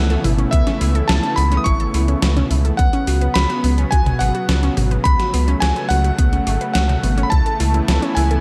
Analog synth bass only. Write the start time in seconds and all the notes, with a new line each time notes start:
Already playing: C#2
0.24 G#1
0.53 C#2
0.81 C#2
1.09 C#2
1.37 C#2
1.66 G#1
1.94 C#2
2.22 C#2
2.51 C#2
2.79 C#2
3.07 C#2
3.36 C#2
3.64 C#2
3.92 C#2
4.20 G#1
4.49 C#2
4.77 G#1
5.05 C#2
5.34 C#2
5.62 C#2
5.90 C#2
6.19 C#2
6.47 G#1
6.75 C#2
7.04 G#1
7.32 C#2
7.60 C#2
7.88 C#2
8.17 C#2